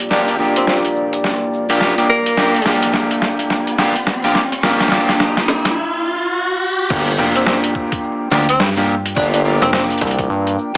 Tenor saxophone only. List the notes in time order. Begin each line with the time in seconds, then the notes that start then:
0.11 D4
0.28 D4
0.57 C4
0.68 C4
2.09 A#3
7.36 C4
7.47 C4
8.49 C4
9.16 D4
9.33 D4
9.62 C4
9.73 C4